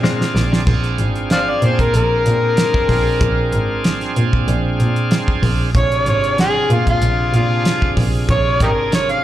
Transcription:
Already playing: tonewheel organ C4 D4 F4 G#4
0.03 clean electric guitar A#2 G#3 C4 D4, tonewheel organ F5, snare
0.21 snare
0.35 double bass A#1, tonewheel organ D5, muted clean electric guitar stroke, snare
0.52 muted clean electric guitar stroke, snare
0.65 double bass A#1, tonewheel organ C4 D4 F4 G#4, kick, crash
0.84 closed hi-hat
0.98 double bass G#1, closed hi-hat
1.16 closed hi-hat
1.30 harmonica C5 D5 F5, snare, closed hi-hat
1.50 harmonica D5
1.62 double bass A#2, harmonica C5, closed hi-hat
1.79 harmonica A#4, kick, closed hi-hat
1.94 double bass A#1, harmonica A#4, closed hi-hat
2.26 double bass A#2, closed hi-hat
2.57 snare, closed hi-hat
2.74 kick
2.89 double bass A#1, kick, open hi-hat
3.21 double bass A#1, kick, closed hi-hat
3.52 double bass G#1, closed hi-hat
3.84 snare, closed hi-hat
4.01 snare, closed hi-hat
4.16 double bass A#2, closed hi-hat
4.33 kick
4.48 double bass A#1, closed hi-hat
4.79 double bass A#2, closed hi-hat
4.96 closed hi-hat
5.11 snare, closed hi-hat
5.28 kick
5.43 double bass A#1, kick, open hi-hat
5.74 double bass A#1, tonewheel organ C3 D4 F4 G#4, harmonica C#5, kick, closed hi-hat
5.92 closed hi-hat
6.06 double bass G#1, harmonica C#5, closed hi-hat
6.24 closed hi-hat
6.38 harmonica G#4, snare, closed hi-hat
6.70 double bass A#2, harmonica F4, closed hi-hat
6.87 harmonica F4, kick, closed hi-hat
7.02 double bass A#1, closed hi-hat
7.33 double bass A#2, harmonica F4, closed hi-hat
7.65 snare, closed hi-hat
7.82 kick
7.97 double bass A#1, kick, snare, open hi-hat
8.29 double bass A#1, harmonica C#5, kick, closed hi-hat
8.60 double bass G#1, harmonica D#4 G4 A#4, kick, closed hi-hat
8.92 harmonica C#5, snare, closed hi-hat
9.09 harmonica F5, closed hi-hat

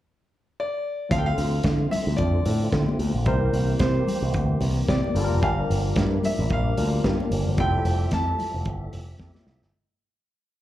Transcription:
0.60 grand piano D5
1.09 picked electric bass D2, tonewheel organ D3 A3 C4 F4, tine electric piano F3 A3 C4 D4 A4, grand piano F5, kick, closed hi-hat, muted conga
1.18 grand piano G5
1.26 grand piano F5
1.38 picked electric bass D2, open hi-hat, muted conga
1.63 picked electric bass D3, kick, snare, closed hi-hat, high conga
1.91 grand piano E5, open hi-hat, low conga
2.07 picked electric bass D2
2.17 picked electric bass F2, grand piano D5, kick, closed hi-hat
2.45 picked electric bass A2, open hi-hat, muted conga
2.73 picked electric bass D3, kick, snare, closed hi-hat, high conga
2.88 high conga
2.99 picked electric bass D2, open hi-hat
3.15 picked electric bass A#1
3.25 picked electric bass C2, tonewheel organ E3 A#3 C4 G4, tine electric piano G3 A#3 C4 D#4 A#4, grand piano C5, kick, closed hi-hat, muted conga
3.33 tine electric piano E4
3.53 picked electric bass C2, open hi-hat, muted conga
3.79 picked electric bass C3, grand piano C5, kick, snare, closed hi-hat, high conga
4.08 open hi-hat, low conga
4.22 picked electric bass C2
4.34 picked electric bass D2, kick, closed hi-hat
4.61 picked electric bass C2, open hi-hat, muted conga
4.88 picked electric bass C3, grand piano D5, kick, snare, closed hi-hat, high conga
5.04 high conga
5.15 picked electric bass G1, tonewheel organ F3 D4 G4, tine electric piano G3 A#3 D4 F4 A4, open hi-hat
5.24 tine electric piano A#4
5.31 picked electric bass F1
5.42 picked electric bass G1, grand piano F5, kick, closed hi-hat, muted conga
5.70 picked electric bass G1, open hi-hat, muted conga
5.96 picked electric bass G2, kick, snare, closed hi-hat, high conga
6.24 grand piano E5, open hi-hat, low conga
6.39 picked electric bass A1
6.50 picked electric bass A#1, grand piano F5, kick, closed hi-hat
6.77 picked electric bass D2, tine electric piano G3 A#3 D4 F4 A#4, open hi-hat, muted conga
7.04 picked electric bass G2, kick, snare, closed hi-hat, high conga
7.20 high conga
7.31 picked electric bass G1, open hi-hat
7.47 picked electric bass G1
7.58 picked electric bass F1, tonewheel organ F3 A3 E5, tine electric piano G3 C4 E4 F4 A4, grand piano G5, kick, closed hi-hat, muted conga
7.85 picked electric bass F1, open hi-hat, muted conga
8.11 picked electric bass F2, grand piano A5, kick, snare, closed hi-hat, high conga
8.39 open hi-hat, low conga
8.54 picked electric bass F1
8.65 picked electric bass G1, kick, closed hi-hat
8.93 picked electric bass F1, open hi-hat, muted conga
9.19 picked electric bass F2, kick, snare, high conga
9.34 snare, high conga
9.47 picked electric bass C2, snare
9.62 picked electric bass G1, snare

